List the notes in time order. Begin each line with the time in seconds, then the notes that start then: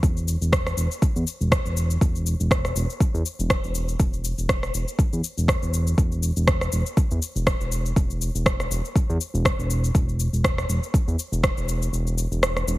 0.03 E1, kick, shaker
0.17 shaker
0.28 shaker
0.41 E1, shaker
0.53 kick, cross-stick, shaker
0.67 cross-stick, shaker
0.77 E1, shaker
0.91 shaker
1.02 kick, shaker
1.16 E2, shaker
1.27 shaker
1.41 E1, shaker
1.52 kick, cross-stick, shaker
1.65 E1, shaker
1.77 shaker
1.91 shaker
2.01 E1, kick, shaker
2.15 shaker
2.27 shaker
2.40 E1, shaker
2.51 kick, cross-stick, shaker
2.65 cross-stick, shaker
2.76 E1, shaker
2.90 shaker
3.00 kick, shaker
3.14 E2, shaker
3.26 shaker
3.39 E1, shaker
3.50 kick, cross-stick, shaker
3.64 E1, shaker
3.75 shaker
3.88 shaker
4.00 E1, kick, shaker
4.13 shaker
4.25 shaker
4.38 E1, shaker
4.49 kick, cross-stick, shaker
4.63 cross-stick, shaker
4.74 E1, shaker
4.88 shaker
4.99 kick, shaker
5.13 E2, shaker
5.24 shaker
5.37 E1, shaker
5.48 kick, cross-stick, shaker
5.62 E1, shaker
5.74 shaker
5.87 shaker
5.98 E1, kick, shaker
6.12 shaker
6.23 shaker
6.36 E1, shaker
6.47 kick, cross-stick, shaker
6.61 cross-stick, shaker
6.72 E1, shaker
6.86 shaker
6.97 kick, shaker
7.11 E2, shaker
7.22 shaker
7.36 E1, shaker
7.47 kick, cross-stick, shaker
7.60 E1, shaker
7.72 shaker
7.86 shaker
7.96 E1, kick, shaker
8.10 shaker
8.22 shaker
8.35 E1, shaker
8.46 kick, cross-stick, shaker
8.60 cross-stick, shaker
8.71 E1, shaker
8.85 shaker
8.96 kick, shaker
9.09 E2, shaker
9.21 shaker
9.34 E1, shaker
9.45 kick, cross-stick, shaker
9.59 E1, shaker
9.70 shaker
9.84 shaker
9.95 E1, kick, shaker
10.09 shaker
10.20 shaker
10.33 E1, shaker
10.44 kick, cross-stick, shaker
10.58 cross-stick, shaker
10.69 E1, shaker
10.83 shaker
10.94 kick, shaker
11.07 E2, shaker
11.19 shaker
11.32 E1, shaker
11.43 kick, cross-stick, shaker
11.57 E1, shaker
11.69 shaker
11.82 shaker
11.93 E1, shaker
12.07 shaker
12.18 shaker
12.31 E1, shaker
12.43 cross-stick, shaker
12.57 cross-stick, shaker
12.67 E1, shaker